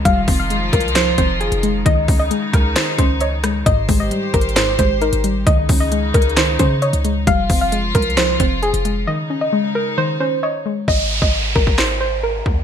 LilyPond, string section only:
\new Staff \with { instrumentName = "String section" } { \time 4/4 \key aes \major \tempo 4 = 133 <ees f f'>1 | <des ees'>1 | <g' c''>1 | <des ees'>1 |
<f f'>1 | <des ees'>1 | r1 | }